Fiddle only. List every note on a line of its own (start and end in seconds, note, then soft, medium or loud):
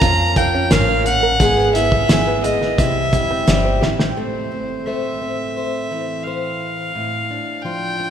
0.00 0.38 A#5 loud
0.37 0.73 G5 medium
0.71 1.06 F5 medium
1.06 1.71 F#5 medium
1.75 2.40 E5 medium
2.44 2.80 D#5 medium
2.78 3.82 E5 medium
4.18 4.87 C5 medium
4.86 6.24 E5 medium
6.23 7.63 F5 medium
7.61 8.10 G5 medium